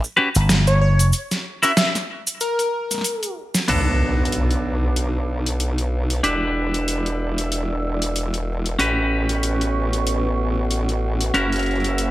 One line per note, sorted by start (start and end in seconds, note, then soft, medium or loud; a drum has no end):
0.04 cabasa soft
0.17 0.28 C#4 medium
0.17 0.28 F#4 medium
0.17 0.28 G4 medium
0.17 0.28 B4 loud
0.35 0.89 G1 medium
0.35 closed hi-hat medium
0.35 cabasa medium
0.49 snare loud
0.49 closed hi-hat medium
0.49 cabasa medium
0.67 0.79 C#5 medium
0.67 closed hi-hat soft
0.67 cabasa soft
0.81 1.06 C#5 medium
0.89 1.11 F#1 medium
0.99 closed hi-hat medium
0.99 cabasa medium
1.13 closed hi-hat medium
1.13 cabasa medium
1.31 snare soft
1.31 closed hi-hat soft
1.31 cabasa soft
1.62 1.71 C#4 medium
1.62 1.71 E4 medium
1.62 1.71 F#4 medium
1.62 1.71 A#4 medium
1.62 1.72 E5 medium
1.62 closed hi-hat medium
1.62 cabasa medium
1.77 1.89 E5 medium
1.77 snare loud
1.77 closed hi-hat medium
1.77 cabasa medium
1.95 snare medium
1.95 closed hi-hat soft
1.95 cabasa soft
2.27 closed hi-hat medium
2.27 cabasa medium
2.41 3.31 A#4 loud
2.41 closed hi-hat medium
2.41 cabasa medium
2.59 closed hi-hat soft
2.59 cabasa soft
2.91 snare soft
2.91 closed hi-hat medium
2.91 cabasa medium
2.94 snare soft
2.98 snare soft
3.01 snare soft
3.01 closed hi-hat medium
3.01 cabasa medium
3.23 closed hi-hat soft
3.23 cabasa soft
3.54 snare medium
3.54 closed hi-hat medium
3.54 cabasa medium
3.68 6.21 B1 medium
3.68 6.21 B3 medium
3.68 6.20 D4 medium
3.68 6.20 F#4 medium
3.68 6.21 A4 medium
3.68 6.21 B4 medium
3.68 6.21 A5 medium
3.68 6.21 D6 medium
3.68 closed hi-hat medium
3.68 crash medium
3.68 impact medium
4.25 closed hi-hat medium
4.32 closed hi-hat medium
4.51 closed hi-hat soft
4.96 closed hi-hat medium
5.46 closed hi-hat medium
5.60 closed hi-hat medium
5.78 closed hi-hat soft
6.10 closed hi-hat medium
6.23 8.76 E1 medium
6.23 8.76 D4 medium
6.23 8.76 E4 medium
6.23 8.76 G4 medium
6.23 8.76 B4 medium
6.23 8.77 D5 medium
6.23 8.77 E6 medium
6.23 closed hi-hat medium
6.74 closed hi-hat medium
6.88 closed hi-hat medium
7.06 closed hi-hat soft
7.38 closed hi-hat medium
7.52 closed hi-hat medium
8.02 closed hi-hat medium
8.16 closed hi-hat medium
8.34 closed hi-hat soft
8.66 closed hi-hat medium
8.79 11.32 A1 medium
8.79 11.31 C#4 medium
8.79 11.31 F#4 medium
8.79 11.31 G4 medium
8.79 11.32 B4 medium
8.79 11.31 B4 medium
8.79 12.11 F#5 medium
8.79 11.32 C#6 medium
8.79 closed hi-hat medium
9.29 closed hi-hat medium
9.43 closed hi-hat medium
9.61 closed hi-hat soft
9.93 closed hi-hat soft
10.07 closed hi-hat medium
10.71 closed hi-hat medium
10.89 closed hi-hat soft
11.21 closed hi-hat soft
11.34 12.11 F#1 medium
11.34 12.11 C#4 medium
11.34 12.11 E4 medium
11.34 12.11 F#4 medium
11.34 12.11 A#4 medium
11.34 12.11 E6 medium
11.34 closed hi-hat medium
11.52 closed hi-hat soft
11.56 closed hi-hat soft
11.59 closed hi-hat soft
11.63 closed hi-hat soft
11.66 closed hi-hat soft
11.71 closed hi-hat soft
11.75 closed hi-hat soft
11.80 closed hi-hat soft
11.84 closed hi-hat soft
11.98 closed hi-hat medium